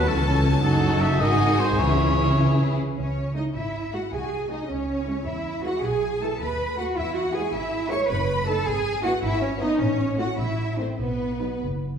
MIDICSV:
0, 0, Header, 1, 7, 480
1, 0, Start_track
1, 0, Key_signature, 4, "minor"
1, 0, Tempo, 375235
1, 812, Time_signature, 6, 3, 24, 8
1, 1780, Tempo, 391389
1, 5140, Tempo, 378310
1, 9466, Key_signature, 4, "major"
1, 12340, Tempo, 403226
1, 14935, End_track
2, 0, Start_track
2, 0, Title_t, "Violin section"
2, 0, Program_c, 0, 48
2, 89, Note_on_c, 0, 69, 67
2, 96, Note_off_c, 0, 69, 0
2, 96, Note_on_c, 0, 69, 71
2, 784, Note_off_c, 0, 69, 0
2, 799, Note_on_c, 0, 69, 68
2, 802, Note_on_c, 0, 66, 71
2, 1514, Note_off_c, 0, 69, 0
2, 1515, Note_off_c, 0, 66, 0
2, 1533, Note_on_c, 0, 68, 77
2, 1537, Note_on_c, 0, 66, 79
2, 2247, Note_off_c, 0, 66, 0
2, 2249, Note_off_c, 0, 68, 0
2, 2264, Note_on_c, 0, 68, 64
2, 2266, Note_on_c, 0, 64, 67
2, 3456, Note_off_c, 0, 68, 0
2, 3457, Note_off_c, 0, 64, 0
2, 3718, Note_on_c, 0, 73, 47
2, 4161, Note_off_c, 0, 73, 0
2, 4194, Note_on_c, 0, 75, 42
2, 4289, Note_off_c, 0, 75, 0
2, 4420, Note_on_c, 0, 76, 47
2, 4889, Note_off_c, 0, 76, 0
2, 4901, Note_on_c, 0, 78, 44
2, 5138, Note_off_c, 0, 78, 0
2, 5145, Note_on_c, 0, 80, 46
2, 5614, Note_off_c, 0, 80, 0
2, 5622, Note_on_c, 0, 75, 44
2, 5856, Note_on_c, 0, 73, 50
2, 5857, Note_off_c, 0, 75, 0
2, 6581, Note_off_c, 0, 73, 0
2, 6583, Note_on_c, 0, 76, 48
2, 7064, Note_on_c, 0, 78, 50
2, 7066, Note_off_c, 0, 76, 0
2, 7303, Note_off_c, 0, 78, 0
2, 7319, Note_on_c, 0, 80, 56
2, 7788, Note_on_c, 0, 81, 51
2, 7802, Note_off_c, 0, 80, 0
2, 8033, Note_off_c, 0, 81, 0
2, 8038, Note_on_c, 0, 83, 59
2, 8501, Note_on_c, 0, 78, 52
2, 8513, Note_off_c, 0, 83, 0
2, 8599, Note_off_c, 0, 78, 0
2, 8738, Note_on_c, 0, 76, 69
2, 8979, Note_off_c, 0, 76, 0
2, 8980, Note_on_c, 0, 78, 58
2, 9215, Note_on_c, 0, 80, 61
2, 9219, Note_off_c, 0, 78, 0
2, 9459, Note_off_c, 0, 80, 0
2, 9464, Note_on_c, 0, 76, 68
2, 9938, Note_off_c, 0, 76, 0
2, 9939, Note_on_c, 0, 85, 68
2, 10034, Note_off_c, 0, 85, 0
2, 10170, Note_on_c, 0, 83, 71
2, 10640, Note_off_c, 0, 83, 0
2, 10640, Note_on_c, 0, 81, 67
2, 10884, Note_on_c, 0, 80, 75
2, 10885, Note_off_c, 0, 81, 0
2, 11361, Note_on_c, 0, 78, 65
2, 11366, Note_off_c, 0, 80, 0
2, 11603, Note_off_c, 0, 78, 0
2, 11612, Note_on_c, 0, 76, 77
2, 11847, Note_on_c, 0, 73, 67
2, 11851, Note_off_c, 0, 76, 0
2, 12094, Note_off_c, 0, 73, 0
2, 12094, Note_on_c, 0, 75, 67
2, 12332, Note_on_c, 0, 73, 65
2, 12339, Note_off_c, 0, 75, 0
2, 12790, Note_off_c, 0, 73, 0
2, 12803, Note_on_c, 0, 78, 58
2, 13030, Note_on_c, 0, 76, 54
2, 13033, Note_off_c, 0, 78, 0
2, 13502, Note_off_c, 0, 76, 0
2, 13513, Note_on_c, 0, 72, 47
2, 13609, Note_off_c, 0, 72, 0
2, 13757, Note_on_c, 0, 71, 50
2, 14479, Note_off_c, 0, 71, 0
2, 14935, End_track
3, 0, Start_track
3, 0, Title_t, "Oboe"
3, 0, Program_c, 1, 68
3, 99, Note_on_c, 1, 69, 85
3, 561, Note_off_c, 1, 69, 0
3, 811, Note_on_c, 1, 69, 99
3, 1290, Note_on_c, 1, 76, 114
3, 1309, Note_off_c, 1, 69, 0
3, 1537, Note_on_c, 1, 75, 93
3, 1557, Note_off_c, 1, 76, 0
3, 2022, Note_on_c, 1, 72, 96
3, 2040, Note_off_c, 1, 75, 0
3, 2265, Note_on_c, 1, 73, 92
3, 2283, Note_off_c, 1, 72, 0
3, 3480, Note_off_c, 1, 73, 0
3, 14935, End_track
4, 0, Start_track
4, 0, Title_t, "Violin section"
4, 0, Program_c, 2, 48
4, 0, Note_on_c, 2, 81, 89
4, 1534, Note_off_c, 2, 81, 0
4, 1537, Note_on_c, 2, 80, 91
4, 2247, Note_off_c, 2, 80, 0
4, 2268, Note_on_c, 2, 76, 74
4, 3360, Note_off_c, 2, 76, 0
4, 4196, Note_on_c, 2, 76, 44
4, 4372, Note_off_c, 2, 76, 0
4, 4904, Note_on_c, 2, 76, 42
4, 5079, Note_off_c, 2, 76, 0
4, 5621, Note_on_c, 2, 75, 43
4, 5800, Note_off_c, 2, 75, 0
4, 6333, Note_on_c, 2, 73, 46
4, 6516, Note_off_c, 2, 73, 0
4, 7056, Note_on_c, 2, 71, 47
4, 7241, Note_off_c, 2, 71, 0
4, 7799, Note_on_c, 2, 71, 48
4, 7977, Note_off_c, 2, 71, 0
4, 8511, Note_on_c, 2, 71, 52
4, 8690, Note_off_c, 2, 71, 0
4, 9237, Note_on_c, 2, 71, 55
4, 9410, Note_off_c, 2, 71, 0
4, 9948, Note_on_c, 2, 71, 57
4, 10120, Note_off_c, 2, 71, 0
4, 10652, Note_on_c, 2, 71, 61
4, 10830, Note_off_c, 2, 71, 0
4, 11376, Note_on_c, 2, 71, 65
4, 11554, Note_off_c, 2, 71, 0
4, 12094, Note_on_c, 2, 71, 63
4, 12276, Note_off_c, 2, 71, 0
4, 12800, Note_on_c, 2, 73, 59
4, 12975, Note_off_c, 2, 73, 0
4, 13516, Note_on_c, 2, 72, 52
4, 13698, Note_off_c, 2, 72, 0
4, 14252, Note_on_c, 2, 71, 47
4, 14433, Note_off_c, 2, 71, 0
4, 14935, End_track
5, 0, Start_track
5, 0, Title_t, "Cello section"
5, 0, Program_c, 3, 48
5, 102, Note_on_c, 3, 37, 74
5, 809, Note_on_c, 3, 42, 78
5, 814, Note_off_c, 3, 37, 0
5, 1519, Note_off_c, 3, 42, 0
5, 1534, Note_on_c, 3, 44, 74
5, 2254, Note_on_c, 3, 49, 71
5, 2260, Note_off_c, 3, 44, 0
5, 3475, Note_off_c, 3, 49, 0
5, 3719, Note_on_c, 3, 61, 47
5, 4162, Note_off_c, 3, 61, 0
5, 4190, Note_on_c, 3, 63, 54
5, 4285, Note_off_c, 3, 63, 0
5, 4428, Note_on_c, 3, 64, 51
5, 4893, Note_off_c, 3, 64, 0
5, 4900, Note_on_c, 3, 66, 52
5, 4995, Note_off_c, 3, 66, 0
5, 5134, Note_on_c, 3, 68, 53
5, 5171, Note_off_c, 3, 68, 0
5, 5226, Note_on_c, 3, 66, 48
5, 5315, Note_off_c, 3, 66, 0
5, 5315, Note_on_c, 3, 68, 52
5, 5617, Note_on_c, 3, 63, 57
5, 5620, Note_off_c, 3, 68, 0
5, 5854, Note_off_c, 3, 63, 0
5, 5858, Note_on_c, 3, 61, 53
5, 6568, Note_off_c, 3, 61, 0
5, 6582, Note_on_c, 3, 64, 61
5, 7056, Note_off_c, 3, 64, 0
5, 7067, Note_on_c, 3, 66, 62
5, 7309, Note_off_c, 3, 66, 0
5, 7311, Note_on_c, 3, 68, 66
5, 7797, Note_off_c, 3, 68, 0
5, 7797, Note_on_c, 3, 69, 64
5, 8037, Note_off_c, 3, 69, 0
5, 8044, Note_on_c, 3, 71, 69
5, 8507, Note_off_c, 3, 71, 0
5, 8516, Note_on_c, 3, 66, 74
5, 8748, Note_off_c, 3, 66, 0
5, 8752, Note_on_c, 3, 64, 74
5, 8991, Note_off_c, 3, 64, 0
5, 8995, Note_on_c, 3, 66, 74
5, 9229, Note_on_c, 3, 68, 73
5, 9231, Note_off_c, 3, 66, 0
5, 9466, Note_off_c, 3, 68, 0
5, 9470, Note_on_c, 3, 64, 80
5, 9932, Note_off_c, 3, 64, 0
5, 9944, Note_on_c, 3, 73, 88
5, 10178, Note_off_c, 3, 73, 0
5, 10182, Note_on_c, 3, 71, 72
5, 10656, Note_off_c, 3, 71, 0
5, 10657, Note_on_c, 3, 69, 85
5, 10889, Note_off_c, 3, 69, 0
5, 10895, Note_on_c, 3, 68, 90
5, 11366, Note_on_c, 3, 66, 85
5, 11372, Note_off_c, 3, 68, 0
5, 11464, Note_off_c, 3, 66, 0
5, 11611, Note_on_c, 3, 64, 85
5, 11850, Note_off_c, 3, 64, 0
5, 11853, Note_on_c, 3, 61, 80
5, 11951, Note_off_c, 3, 61, 0
5, 12100, Note_on_c, 3, 63, 80
5, 12337, Note_off_c, 3, 63, 0
5, 12337, Note_on_c, 3, 61, 77
5, 12799, Note_on_c, 3, 66, 79
5, 12802, Note_off_c, 3, 61, 0
5, 12893, Note_off_c, 3, 66, 0
5, 13033, Note_on_c, 3, 64, 61
5, 13504, Note_off_c, 3, 64, 0
5, 13512, Note_on_c, 3, 60, 62
5, 13749, Note_on_c, 3, 59, 57
5, 13758, Note_off_c, 3, 60, 0
5, 14475, Note_off_c, 3, 59, 0
5, 14935, End_track
6, 0, Start_track
6, 0, Title_t, "Viola section"
6, 0, Program_c, 4, 48
6, 96, Note_on_c, 4, 52, 73
6, 102, Note_on_c, 4, 61, 74
6, 324, Note_off_c, 4, 52, 0
6, 339, Note_on_c, 4, 52, 71
6, 570, Note_off_c, 4, 52, 0
6, 573, Note_on_c, 4, 54, 74
6, 806, Note_on_c, 4, 63, 82
6, 813, Note_off_c, 4, 61, 0
6, 1535, Note_off_c, 4, 54, 0
6, 1537, Note_on_c, 4, 51, 76
6, 2229, Note_off_c, 4, 63, 0
6, 2256, Note_on_c, 4, 61, 71
6, 2257, Note_on_c, 4, 52, 68
6, 2261, Note_off_c, 4, 51, 0
6, 3452, Note_off_c, 4, 52, 0
6, 3476, Note_off_c, 4, 61, 0
6, 4197, Note_on_c, 4, 56, 37
6, 4198, Note_on_c, 4, 64, 40
6, 4372, Note_off_c, 4, 56, 0
6, 4373, Note_off_c, 4, 64, 0
6, 4904, Note_on_c, 4, 56, 41
6, 4905, Note_on_c, 4, 64, 40
6, 5079, Note_off_c, 4, 56, 0
6, 5080, Note_off_c, 4, 64, 0
6, 5616, Note_on_c, 4, 56, 38
6, 5622, Note_on_c, 4, 66, 43
6, 5797, Note_off_c, 4, 56, 0
6, 5800, Note_off_c, 4, 66, 0
6, 6333, Note_on_c, 4, 64, 42
6, 6334, Note_on_c, 4, 56, 43
6, 6517, Note_off_c, 4, 56, 0
6, 6517, Note_off_c, 4, 64, 0
6, 7069, Note_on_c, 4, 64, 44
6, 7071, Note_on_c, 4, 56, 44
6, 7248, Note_off_c, 4, 64, 0
6, 7249, Note_off_c, 4, 56, 0
6, 7796, Note_on_c, 4, 56, 48
6, 7796, Note_on_c, 4, 64, 49
6, 7975, Note_off_c, 4, 56, 0
6, 7975, Note_off_c, 4, 64, 0
6, 8514, Note_on_c, 4, 66, 48
6, 8516, Note_on_c, 4, 57, 48
6, 8691, Note_off_c, 4, 66, 0
6, 8692, Note_off_c, 4, 57, 0
6, 9235, Note_on_c, 4, 64, 57
6, 9236, Note_on_c, 4, 56, 54
6, 9409, Note_off_c, 4, 56, 0
6, 9409, Note_off_c, 4, 64, 0
6, 9944, Note_on_c, 4, 56, 56
6, 9944, Note_on_c, 4, 64, 57
6, 10117, Note_off_c, 4, 56, 0
6, 10117, Note_off_c, 4, 64, 0
6, 10651, Note_on_c, 4, 63, 59
6, 10654, Note_on_c, 4, 57, 61
6, 10830, Note_off_c, 4, 63, 0
6, 10831, Note_off_c, 4, 57, 0
6, 11368, Note_on_c, 4, 64, 64
6, 11371, Note_on_c, 4, 59, 59
6, 11549, Note_off_c, 4, 64, 0
6, 11551, Note_off_c, 4, 59, 0
6, 12097, Note_on_c, 4, 64, 64
6, 12098, Note_on_c, 4, 59, 64
6, 12278, Note_off_c, 4, 59, 0
6, 12278, Note_off_c, 4, 64, 0
6, 12794, Note_on_c, 4, 57, 59
6, 12794, Note_on_c, 4, 64, 56
6, 12972, Note_off_c, 4, 57, 0
6, 12972, Note_off_c, 4, 64, 0
6, 13508, Note_on_c, 4, 57, 47
6, 13514, Note_on_c, 4, 64, 52
6, 13693, Note_off_c, 4, 57, 0
6, 13696, Note_off_c, 4, 64, 0
6, 14246, Note_on_c, 4, 54, 44
6, 14247, Note_on_c, 4, 63, 45
6, 14430, Note_off_c, 4, 54, 0
6, 14431, Note_off_c, 4, 63, 0
6, 14935, End_track
7, 0, Start_track
7, 0, Title_t, "Double bass section"
7, 0, Program_c, 5, 48
7, 97, Note_on_c, 5, 37, 73
7, 811, Note_off_c, 5, 37, 0
7, 814, Note_on_c, 5, 30, 83
7, 1521, Note_off_c, 5, 30, 0
7, 1527, Note_on_c, 5, 32, 84
7, 2257, Note_off_c, 5, 32, 0
7, 2257, Note_on_c, 5, 37, 73
7, 3476, Note_off_c, 5, 37, 0
7, 3715, Note_on_c, 5, 37, 47
7, 4280, Note_off_c, 5, 37, 0
7, 4429, Note_on_c, 5, 32, 49
7, 4990, Note_off_c, 5, 32, 0
7, 5139, Note_on_c, 5, 36, 47
7, 5710, Note_off_c, 5, 36, 0
7, 5857, Note_on_c, 5, 37, 46
7, 6430, Note_off_c, 5, 37, 0
7, 6574, Note_on_c, 5, 40, 51
7, 7152, Note_off_c, 5, 40, 0
7, 7299, Note_on_c, 5, 35, 57
7, 7880, Note_off_c, 5, 35, 0
7, 8034, Note_on_c, 5, 39, 58
7, 8600, Note_off_c, 5, 39, 0
7, 8747, Note_on_c, 5, 40, 59
7, 9315, Note_off_c, 5, 40, 0
7, 9461, Note_on_c, 5, 32, 65
7, 10024, Note_off_c, 5, 32, 0
7, 10173, Note_on_c, 5, 30, 71
7, 10740, Note_off_c, 5, 30, 0
7, 10888, Note_on_c, 5, 32, 71
7, 11459, Note_off_c, 5, 32, 0
7, 11612, Note_on_c, 5, 32, 75
7, 12187, Note_off_c, 5, 32, 0
7, 12341, Note_on_c, 5, 33, 73
7, 12891, Note_off_c, 5, 33, 0
7, 13035, Note_on_c, 5, 33, 67
7, 13606, Note_off_c, 5, 33, 0
7, 13759, Note_on_c, 5, 35, 55
7, 14341, Note_off_c, 5, 35, 0
7, 14496, Note_on_c, 5, 30, 51
7, 14935, Note_off_c, 5, 30, 0
7, 14935, End_track
0, 0, End_of_file